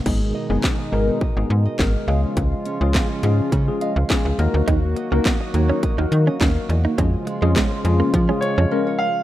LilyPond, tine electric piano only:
\new Staff \with { instrumentName = "Tine electric piano" } { \time 4/4 \key des \mixolydian \tempo 4 = 104 << { r1 | r2 r8 ees''16 f''16 aes''8 bes''8 | r1 | r1 | } \\ { <aes ces' ees' aes'>8 r16 <aes ces' ees' aes'>8 r16 <aes ces' ees' bes'>8 r16 <aes ces' ees' aes'>8 r16 <aes ces' ees' bes'>8 <aes des' f' aes'>8~ | <aes des' f' aes'>8 r16 <aes des' f' aes'>8 r16 <aes des' f' aes'>8 r16 <aes des' f' aes'>8 r16 <aes des' f' aes'>8 <bes ees' ges' bes'>8~ | <bes ees' ges' bes'>8 r16 <bes ees' ges' bes'>8 r16 <bes ees' ges' des''>8 r16 <bes ees' ges' bes'>8 r16 <bes ees' ges' bes'>8 r8 | <aes des' f' aes'>8 r16 <aes des' f' aes'>8 r16 <aes des' f' aes'>8 r16 <aes des' f' aes'>8 r16 <aes des' f' bes'>8 r8 | } >> }